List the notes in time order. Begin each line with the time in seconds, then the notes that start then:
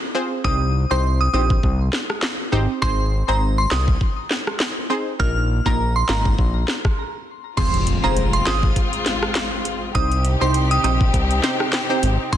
0.14 C4 F4 G#4 C5
0.44 C2 C4 D#4 G4 C5 D#6, kick
0.91 C2 C4 D#4 G4 C5 C6
1.21 D#6
1.33 A#1 C4 D#4 G4 C5 D#6
1.50 kick
1.63 C2, kick
1.93 snare
2.10 cross-stick
2.22 snare, clap
2.52 G#1 C4 D#4 G4 C5
2.82 G#1 C4 D#4 G#4 C5 C6, kick
3.28 G#1 C4 D#4 G#4 C5 A#5
3.58 C6
3.71 C2 D#6, snare, clap
3.88 kick
4.01 kick
4.31 snare
4.47 cross-stick
4.60 snare, clap
4.90 C4 D#4 G#4 C5
5.19 A#1 A#3 D#4 F4 A#4 F6, kick
5.66 A#1 A#3 D#4 F4 A#4 A#5, kick
5.96 C6
6.08 G#1 A#3 D#4 F4 A#4 A#5, snare, clap
6.25 kick
6.39 A#1, kick
6.68 snare
6.85 kick, cross-stick
7.57 F1 G#3 C4 F4 G#4 C5 C6, kick, closed hi-hat, crash, impact
7.74 closed hi-hat
7.87 closed hi-hat
8.03 F1 C4 F4 G#4 C5 A#5
8.17 closed hi-hat
8.33 C6, closed hi-hat
8.46 G#1 C4 F4 G#4 C5 D#6, snare, clap, closed hi-hat
8.63 kick
8.76 kick, closed hi-hat
8.93 closed hi-hat
9.06 snare, closed hi-hat
9.23 cross-stick
9.35 snare, clap, closed hi-hat
9.65 closed hi-hat
9.95 C2 C3 C4 D#4 G4 C5 D#6, kick, closed hi-hat
10.12 closed hi-hat
10.25 closed hi-hat
10.41 C2 C4 D#4 G4 C5 C6
10.54 closed hi-hat
10.71 D#6, closed hi-hat
10.84 A#1 C4 D#4 G4 C5 D#6, closed hi-hat
11.01 kick
11.14 C2, kick, closed hi-hat
11.31 closed hi-hat
11.43 C4 D#4 G4 C5, snare, closed hi-hat
11.60 cross-stick
11.73 snare, clap, closed hi-hat
11.89 C4 D#4 G4 C5
12.03 G#1, closed hi-hat
12.32 G#1 G#3 C4 D#4 G#4 C5 C6, kick, closed hi-hat